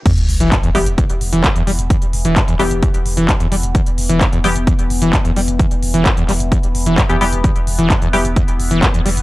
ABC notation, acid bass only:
X:1
M:4/4
L:1/16
Q:1/4=130
K:Em
V:1 name="Acid bass" clef=bass
E,, z2 E, G,, E,, G, z E,, z2 E, G,, E,, G, z | E,, z2 E, G,, E,, G, z E,, z2 E, G,, E,, G, z | E,, z2 E, G,, E,, G, z E,, z2 E, G,, E,, G, z | E,, z2 E, G,, E,, G, z E,, z2 E, G,, E,, G, z |
E,, z2 E, G,, E,, G, z E,, z2 E, G,, E,, G, z |]